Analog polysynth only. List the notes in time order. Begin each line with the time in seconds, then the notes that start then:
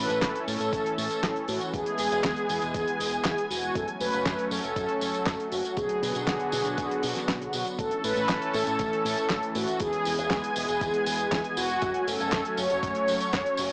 Already playing: B4
0.48 A4
0.73 A4
0.98 A4
1.49 F#4
1.74 G#4
1.99 G#4
3.50 F#4
3.76 A4
4.01 B4
4.51 A4
4.76 A4
5.01 A4
5.52 F#4
5.77 G#4
6.02 G#4
7.54 F#4
7.79 A4
8.04 B4
8.55 A4
8.80 A4
9.05 A4
9.56 F#4
9.81 G#4
10.05 G#4
11.57 F#4
12.07 A4
12.57 C#5